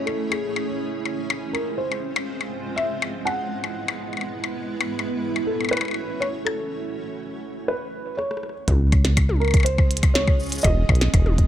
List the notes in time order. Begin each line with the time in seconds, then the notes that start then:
Already playing: A3 C#4 E4 G#4 C#5
0.06 A4, percussion blips
0.30 G#4, percussion blips
0.56 percussion blips
0.81 G#3 C4 F4 C5
1.05 percussion blips
1.30 percussion blips
1.53 A#4, percussion blips
1.78 C5
1.92 percussion blips
2.16 percussion blips
2.41 percussion blips
2.76 G#3 B3 E4 B4 E5, percussion blips
3.02 percussion blips
3.25 F#5, percussion blips
3.64 percussion blips
3.88 percussion blips
4.13 percussion blips
4.17 percussion blips
4.21 percussion blips
4.44 percussion blips
4.74 A3 C#4 F#4 C#5
4.81 percussion blips
4.99 percussion blips
5.36 percussion blips
5.47 A4
5.61 percussion blips
5.65 percussion blips
5.69 B4, percussion blips
5.73 percussion blips
5.77 percussion blips
5.81 percussion blips
5.85 percussion blips
5.88 percussion blips
5.91 percussion blips
5.94 percussion blips
6.20 C#5, percussion blips
6.45 A4, percussion blips
7.68 B4
8.17 C#5, cross-stick
8.31 cross-stick
8.37 cross-stick
8.43 cross-stick
8.49 cross-stick
8.68 C#2 G#3 C#4 F4 G#4, kick, cross-stick, closed hi-hat, high tom
8.92 kick, closed hi-hat, percussion blips
9.05 snare, closed hi-hat
9.17 kick, closed hi-hat, percussion blips
9.29 high tom
9.40 A#4, percussion blips
9.45 percussion blips
9.48 percussion blips
9.51 closed hi-hat, percussion blips
9.54 kick, percussion blips
9.57 percussion blips
9.60 percussion blips
9.63 C5, closed hi-hat, percussion blips
9.78 kick, percussion blips
9.91 closed hi-hat
9.97 closed hi-hat
10.03 kick, closed hi-hat, percussion blips
10.14 C#5, snare, closed hi-hat
10.28 kick, percussion blips
10.40 cabasa
10.43 cabasa
10.46 cabasa
10.49 closed hi-hat, cabasa
10.52 cabasa
10.55 cabasa
10.58 cabasa
10.61 E1 G#3 B3 D#4 E4 B4 D#5, kick, closed hi-hat, high tom, cabasa, percussion blips
10.89 B1, kick, percussion blips
10.95 closed hi-hat
11.01 snare, closed hi-hat
11.14 E1, kick, closed hi-hat, percussion blips
11.26 high tom
11.38 kick, closed hi-hat